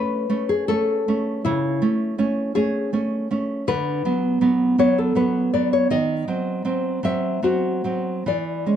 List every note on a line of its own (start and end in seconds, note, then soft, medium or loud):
0.00 0.26 A3 soft
0.00 0.26 C#4 soft
0.00 0.45 B4 medium
0.30 0.65 A3 soft
0.30 0.65 C#4 soft
0.49 0.67 G#4 medium
0.68 1.04 A3 soft
0.68 1.04 C#4 soft
0.68 1.40 A4 medium
1.08 1.41 A3 soft
1.08 1.42 C#4 soft
1.45 1.81 C#3 medium
1.45 2.50 E4 medium
1.82 2.14 A3 soft
1.82 2.15 C#4 soft
2.18 2.51 A3 soft
2.18 2.51 C#4 soft
2.55 2.89 A3 soft
2.55 2.89 C#4 medium
2.55 2.90 G#4 medium
2.93 3.27 A3 soft
2.93 3.27 C#4 medium
3.31 3.64 A3 soft
3.31 3.65 C#4 soft
3.68 4.04 D3 medium
3.68 4.76 B4 medium
4.05 4.39 F#3 soft
4.05 4.39 B3 soft
4.41 4.75 F#3 soft
4.41 4.75 B3 soft
4.78 5.12 F#3 soft
4.78 5.13 B3 soft
4.78 4.97 C#5 medium
4.98 5.15 A4 medium
5.15 5.49 F#3 soft
5.15 5.50 B3 soft
5.15 5.51 B4 medium
5.54 5.87 F#3 soft
5.54 5.88 B3 soft
5.54 5.71 D5 medium
5.73 5.90 C#5 medium
5.90 6.27 D#3 medium
5.90 7.00 D#5 medium
6.28 6.62 F#3 soft
6.28 6.62 C4 soft
6.65 6.99 F#3 soft
6.65 7.00 C4 soft
7.03 7.39 F#3 soft
7.03 7.39 C4 soft
7.03 7.41 E5 medium
7.43 7.81 F#3 soft
7.43 7.81 C4 soft
7.43 8.23 F#4 medium
7.84 8.23 F#3 soft
7.84 8.23 C4 soft
8.26 8.65 E3 soft
8.26 8.76 D5 medium
8.66 8.76 G#3 soft
8.66 8.76 C#4 soft